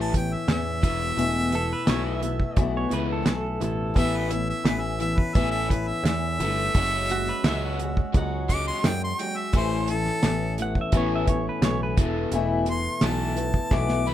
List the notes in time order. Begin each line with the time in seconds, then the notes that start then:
Already playing: A1 A2 E3 A3 B3 C#4 E4
0.01 A5
0.13 A2 E3 C#4 E4, kick, closed hi-hat
0.17 B3 G5
0.34 E5
0.48 E2 A2 E3 B3, snare, closed hi-hat
0.52 C#4 E4 E5
0.82 E1 E2 B2 E3 A3 B3 E4, kick, closed hi-hat
1.16 E1 E2 B2 E3 A3 B3 E4, closed hi-hat
1.52 E2 B2 E3 A3 B3 E4 A4, closed hi-hat
1.73 B4
1.85 B1 E2 B2 E3 A3 B3 E4, snare, closed hi-hat
1.89 C#5
2.06 E5
2.20 E2 B2 E3 A3 B3 E4, closed hi-hat
2.40 kick
2.57 B1 E2 B2 E3 A3 B3 E4 D5, kick, closed hi-hat
2.77 C#5
2.89 C#2 E2 B2 E3 A3 B3 E4, closed hi-hat
2.93 B4
3.12 A4
3.22 B1 E3 A3 B3 E4, snare, closed hi-hat
3.27 E2 B2 A4
3.60 A1 E2 B2 E3 A3 B3 E4, closed hi-hat
3.64 A3 B3 A4
3.71 C4 D4
3.77 E4 F4
3.81 G4 A4
3.87 B4 C5
3.93 A1 A2 E3 B3 C#4 E4 A4 D5, kick, closed hi-hat
3.97 E3 A3 E5
4.17 B4
4.28 A2 E3 B3 C#4 E4, closed hi-hat
4.33 E5
4.50 E5
4.63 A1 A2 E3 B3 C#4 E4 B4, snare, closed hi-hat
4.82 E5
4.99 A2 E3 B3 C#4 E4 E5, closed hi-hat
5.18 B4, kick
5.34 A1 A2 E3 A3 B3 C#4 E4 E5, kick, closed hi-hat
5.51 E5
5.68 A2 E3 B3 C#4 E4 B4, kick, closed hi-hat
5.88 E5
6.02 E2 A2 E3 B3 C#4, snare, closed hi-hat
6.06 E4 E5
6.38 G1 A2 E3 A3 B3 C#4 E4, closed hi-hat
6.75 F#1 F#3 G#3 C#4 F#4 G#4, kick, closed hi-hat
7.10 F#3 G#3 C#4 F#4, closed hi-hat
7.27 B4, snare
7.44 C#2 F#3 G#3 C#4 E5, snare, closed hi-hat
7.48 C#4 F#4
7.65 F#5
7.79 F#3 G#3 C#4 F#4, closed hi-hat
7.84 G#3
7.97 kick
8.13 C#2 F#3 G#3 C#4 F#5, kick, closed hi-hat
8.18 F#4
8.49 F#3 G#3 C#4 F#4 D6, kick, closed hi-hat
8.54 G#3
8.68 C6
8.84 F#2 F#3 G#3 C#4 G5, snare, closed hi-hat
8.89 F#4
9.04 C6
9.19 F#3 G#3 C#4 F#4 G5, closed hi-hat
9.37 E5
9.53 A1 A2 E3 A3 C#4 E4 A4, kick, closed hi-hat
9.57 C5
9.88 A2 E3 C#4 E4 A4, closed hi-hat
9.93 B3
10.06 snare
10.23 A1 A2 E3 B3 C#4 E4, snare, closed hi-hat
10.58 A2 E3 B3 C#4 E4, closed hi-hat
10.62 F#5
10.75 kick
10.81 E5
10.92 A1 A2 E3 A3 B3 C#4 E4, kick, closed hi-hat
10.97 C#5
11.15 E5
11.27 A2 E3 B3 C#4 E4 C#5, kick, closed hi-hat
11.49 B4
11.62 B1 A2 E3 B3 C#4 E4 C#5, snare, closed hi-hat
11.83 B4
11.96 E1 E2 B2 E3 B3 E4 A4, kick, closed hi-hat
12.00 E3 A3 B3
12.32 E1 E2 B2 E3 A3 B3 E4, closed hi-hat
12.66 E2 B2 E3 A3 B3 E4, closed hi-hat
12.70 C6
13.01 B1 E2 B2 E3 A3 B3 E4, snare, closed hi-hat
13.05 A5
13.34 E2 B2 E3 A3 B3 E4, closed hi-hat
13.54 kick
13.70 B1 E2 B2 E3 A3 B3 E4, kick, snare
13.74 D6
13.89 snare
14.04 E2 B2 E3 A3 B3 E4
14.09 B5